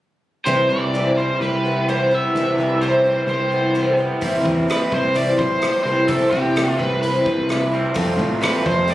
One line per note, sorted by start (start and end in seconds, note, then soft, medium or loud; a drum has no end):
0.45 0.66 C2 medium
0.45 0.70 C3 medium
0.45 0.70 E3 medium
0.45 0.70 G3 medium
0.45 0.70 C4 medium
0.45 0.69 E4 medium
0.45 0.68 B4 medium
0.45 0.69 C5 medium
0.69 1.30 C2 medium
0.69 0.93 E3 medium
0.69 0.94 G3 soft
0.69 0.94 C4 soft
0.69 0.94 E4 soft
0.69 0.93 B4 soft
0.69 1.18 D5 medium
0.94 1.17 C3 medium
0.94 1.17 E3 medium
0.94 1.18 G3 medium
0.94 1.18 C4 medium
0.94 1.17 E4 medium
0.94 1.17 B4 medium
1.17 1.41 G3 soft
1.17 1.42 C4 soft
1.17 1.41 E4 soft
1.17 1.41 B4 soft
1.17 1.41 C5 medium
1.40 2.19 C2 medium
1.40 1.65 G3 medium
1.40 1.65 C4 medium
1.40 1.65 E4 medium
1.40 1.87 G4 medium
1.40 1.89 B4 medium
1.40 1.64 B4 medium
1.63 1.87 G3 soft
1.63 2.09 B3 medium
1.63 1.88 C4 soft
1.63 1.88 E4 soft
1.63 1.88 B4 soft
1.88 2.11 C3 medium
1.88 2.11 E3 medium
1.88 2.11 G3 medium
1.88 2.12 C4 medium
1.88 2.11 E4 medium
1.88 3.05 G4 medium
1.88 2.10 B4 medium
1.88 2.12 C5 medium
2.11 2.36 G3 soft
2.11 3.28 B3 medium
2.11 2.35 C4 soft
2.11 2.35 E4 soft
2.11 2.34 B4 medium
2.11 2.85 E5 medium
2.35 2.54 C2 medium
2.35 2.58 C3 medium
2.35 2.58 E3 medium
2.35 2.59 G3 medium
2.35 2.59 C4 medium
2.35 2.59 E4 medium
2.35 2.57 B4 medium
2.58 3.17 C2 medium
2.58 2.82 E3 medium
2.58 2.81 G3 soft
2.58 2.82 C4 soft
2.58 2.82 E4 soft
2.58 2.81 B4 soft
2.81 3.05 C3 medium
2.81 3.05 E3 medium
2.81 3.05 G3 medium
2.81 3.04 C4 medium
2.81 3.05 E4 medium
2.81 3.03 B4 medium
2.81 3.28 C5 medium
3.04 3.27 G3 soft
3.04 3.28 C4 soft
3.04 3.28 E4 soft
3.04 3.28 B4 soft
3.27 4.06 C2 medium
3.27 3.51 G3 medium
3.27 3.52 C4 medium
3.27 3.51 E4 medium
3.27 3.75 G4 medium
3.27 3.50 B4 medium
3.27 3.95 C5 medium
3.51 3.74 G3 soft
3.51 3.98 B3 medium
3.51 3.74 C4 soft
3.51 3.74 E4 soft
3.51 3.75 B4 soft
3.75 3.98 C3 medium
3.75 3.98 E3 medium
3.75 3.98 G3 medium
3.75 3.98 C4 medium
3.75 3.98 E4 medium
3.75 4.22 G4 medium
3.75 3.96 B4 medium
3.97 4.21 G3 soft
3.97 4.22 B3 medium
3.97 4.20 C4 soft
3.97 4.21 E4 medium
3.97 4.21 B4 medium
4.21 4.46 C2 medium
4.21 4.45 C3 medium
4.21 4.45 E3 medium
4.21 4.45 G3 medium
4.21 4.45 C4 medium
4.21 4.44 E4 loud
4.21 4.42 B4 medium
4.21 kick medium
4.21 open hi-hat soft
4.44 4.65 E2 medium
4.44 4.67 G3 soft
4.44 4.67 C4 soft
4.44 4.68 E4 soft
4.44 4.68 B4 medium
4.44 kick medium
4.68 4.92 G3 soft
4.68 4.92 C4 soft
4.68 4.91 E4 soft
4.68 4.90 B4 medium
4.68 4.94 B4 medium
4.68 cross-stick loud
4.68 open hi-hat soft
4.91 5.31 C2 medium
4.91 5.14 G3 soft
4.91 5.14 C4 soft
4.91 5.14 E4 soft
4.91 5.15 B4 soft
4.91 5.15 C5 medium
4.91 kick medium
5.14 5.38 C3 medium
5.14 5.39 E3 medium
5.14 5.39 G3 medium
5.14 5.39 C4 medium
5.14 5.38 E4 medium
5.14 5.37 B4 medium
5.14 5.40 D5 medium
5.14 open hi-hat soft
5.38 5.59 B1 medium
5.38 5.60 G3 soft
5.38 5.61 C4 soft
5.38 5.62 E4 soft
5.38 5.62 B4 soft
5.38 5.82 C5 medium
5.38 kick medium
5.61 5.85 G3 soft
5.61 5.86 C4 medium
5.61 5.85 E4 medium
5.61 5.84 B4 medium
5.61 cross-stick medium
5.61 open hi-hat soft
5.84 6.05 C2 medium
5.84 6.08 E3 medium
5.84 6.08 C4 soft
5.84 6.08 E4 soft
5.84 6.09 B4 soft
5.84 6.09 C5 loud
5.88 6.07 C3 medium
5.88 6.08 G3 soft
6.07 6.29 C2 medium
6.07 6.32 C3 medium
6.07 6.32 E3 medium
6.07 6.33 G3 medium
6.07 6.32 C4 medium
6.07 6.32 E4 medium
6.07 6.31 A4 medium
6.07 6.32 B4 medium
6.07 kick loud
6.07 open hi-hat soft
6.31 6.72 C3 medium
6.31 6.56 C4 soft
6.31 6.56 E4 soft
6.31 6.80 G4 medium
6.31 6.56 B4 soft
6.31 kick medium
6.35 6.55 G3 soft
6.56 6.79 G3 soft
6.56 6.79 C4 soft
6.56 6.79 E4 medium
6.56 6.77 B4 medium
6.56 cross-stick loud
6.56 open hi-hat soft
6.79 7.19 C2 medium
6.79 7.02 G3 soft
6.79 7.03 C4 soft
6.79 7.03 E4 soft
6.79 7.02 B4 medium
6.79 7.00 B4 medium
6.79 kick medium
7.01 7.26 C3 medium
7.01 7.26 E3 medium
7.01 7.26 G3 medium
7.01 7.27 C4 medium
7.01 7.26 E4 medium
7.01 7.68 B4 medium
7.01 7.25 B4 medium
7.01 open hi-hat soft
7.26 7.85 C2 medium
7.26 7.48 G3 soft
7.26 7.49 C4 soft
7.26 7.50 E4 soft
7.26 7.50 B4 soft
7.26 kick medium
7.49 7.73 G3 medium
7.49 7.73 C4 medium
7.49 7.71 E4 medium
7.49 7.70 B4 medium
7.49 cross-stick medium
7.49 open hi-hat soft
7.71 7.94 C3 medium
7.71 7.95 E3 medium
7.71 7.94 G3 soft
7.71 7.94 C4 medium
7.71 7.95 E4 soft
7.71 7.95 B4 soft
7.94 8.94 F2 medium
7.94 8.20 F2 medium
7.94 8.94 C3 medium
7.94 8.19 F3 medium
7.94 8.19 G3 medium
7.94 8.94 A3 medium
7.94 8.19 C4 medium
7.94 8.19 F4 medium
7.94 8.18 A4 medium
7.94 kick loud
7.94 open hi-hat soft
8.19 8.39 A2 medium
8.19 8.40 C4 soft
8.19 8.41 F4 medium
8.19 8.42 A4 medium
8.19 kick medium
8.41 8.65 G3 soft
8.41 8.65 C4 medium
8.41 8.65 F4 medium
8.41 8.64 A4 medium
8.41 8.66 B4 medium
8.41 cross-stick loud
8.41 open hi-hat soft
8.65 8.94 F2 loud
8.65 8.87 C4 soft
8.65 8.87 F4 soft
8.65 8.88 A4 soft
8.65 8.88 C5 medium
8.65 kick medium
8.88 8.94 F3 medium
8.88 8.94 G3 medium
8.88 8.94 C4 medium
8.88 8.94 F4 medium
8.88 8.94 A4 medium
8.88 8.94 D5 medium
8.88 open hi-hat soft